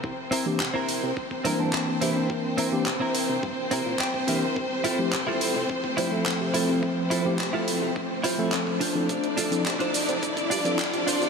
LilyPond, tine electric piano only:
\new Staff \with { instrumentName = "Tine electric piano" } { \time 4/4 \key c \mixolydian \tempo 4 = 106 r8. <e bes c' d' g'>16 r4. <e bes c' d' bes'>16 <e bes c' d' a''>8. <e bes c' d' bes'>8~ | <e bes c' d' bes'>8. <e bes c' d' g'>16 r2 r8 <e bes c' d' g'>16 r16 | r8. <f a c' e' g'>16 r4. <f a c' e' c''>16 <f a c' a' e''>8. <f a c' c'' e''>8~ | <f a c' c'' e''>8. <f a c' e' g'>16 r4. r16 <f a c' a' e''>8. r16 <f c' d' e' a'>16 |
r8. <f c' d' e' a'>16 r4. r16 <f c' d' e' a'>16 r4 | }